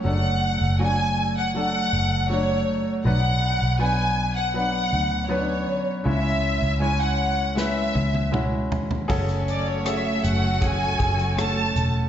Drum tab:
CC |----------------|----------------|----------------|x---------------|
HH |----------------|----------------|----------------|-xx-x-x-x-xxx-x-|
SD |----------------|----------------|--------o-------|----r-------r---|
T1 |----------------|----------------|----------oo----|----------------|
T2 |----------------|----------------|------------o---|----------------|
FT |----------------|----------------|--------------oo|----------------|
BD |----------------|----------------|----------------|o-------o-o-----|